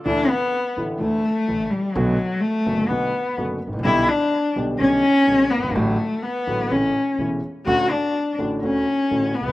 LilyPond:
<<
  \new Staff \with { instrumentName = "Cello" } { \time 4/4 \key d \major \tempo 4 = 126 d'8 b4 r8 a4. g8 | fis4 a4 b4 r4 | e'8 d'4 r8 cis'4. b8 | a4 b4 cis'4 r4 |
fis'8 d'4 r8 cis'4. b8 | }
  \new Staff \with { instrumentName = "Grand piano" } { \clef bass \time 4/4 \key d \major <d, d e a e'>8 r4 <a,, a, d e a e'>8 <d, d e a e'>8 r8 <a,, a, d e a e'>8 r8 | <b,, b, d a b fis'>8 r4 <fis,, fis, d a b fis'>8 <b,, b, d a b fis'>8 r8 <fis,, fis, d a b fis'>8 r32 gis,,32 a,,32 bes,,32 | <b,, b, d g b g'>8 r4 <b,, b, d g b g'>8 <b,, b, d g b g'>8 r8 <b,, b, d g b g'>8 r32 fis,,32 g,,32 gis,,32 | <a,, a, d fis a fis'>8 r4 <a,, a, d fis a fis'>8 <a,, a, cis e a e'>8 r8 <e,, e, cis e a e'>8 r8 |
<d, d a cis' fis'>8 r4 <a,, a, d a cis' fis'>8 <d, d a cis' fis'>8 r8 <a,, a, d a cis' fis'>8 r32 cis,32 d,32 r32 | }
  \new Staff \with { instrumentName = "Upright bass" } { \clef bass \time 4/4 \key d \major d,16. r4 r32 a,,16. r32 d,16. r8 r32 a,,16. r8 r32 | b,,16. r4 r32 fis,,16. r32 b,,16. r8 r32 fis,,16. r16 gis,,32 a,,32 bes,,32 | b,,16. r4 r32 b,,16. r32 b,,16. r8 r32 b,,16. r16 fis,,32 g,,32 gis,,32 | a,,16. r4 r32 a,,16. r32 a,,16. r8 r32 e,,16. r8 r32 |
d,16. r4 r32 a,,16. r32 d,16. r8 r32 a,,16. r16 cis,32 d,32 r32 | }
>>